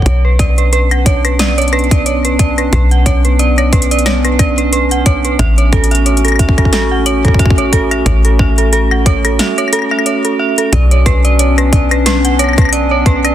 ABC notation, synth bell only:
X:1
M:4/4
L:1/16
Q:"Swing 16ths" 1/4=90
K:Bm
V:1 name="Synth bell"
c B d B B f c B d c B d c B d B | B f c B d c B d c B d B B f c B | e c A e c A e A A f c A e c A e | c A e A A f c A e c A e c A e A |
d c B d c B d B B f c B d c B d |]